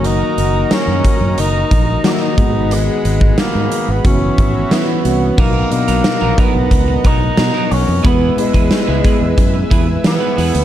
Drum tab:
CC |----------------|----------------|x---------------|----------------|
HH |x-x-x-x-x-x-x-x-|x-x-x-x-x-x-x-x-|--xxx-x-x-x-x-o-|x-xxx-x-x-x-x-ox|
SD |----o-------o---|----o-------o---|----o-------o---|----o-------o---|
BD |------o---o---o-|---o----o-o-----|o-----o-o-o-----|o--o--o-o-o-----|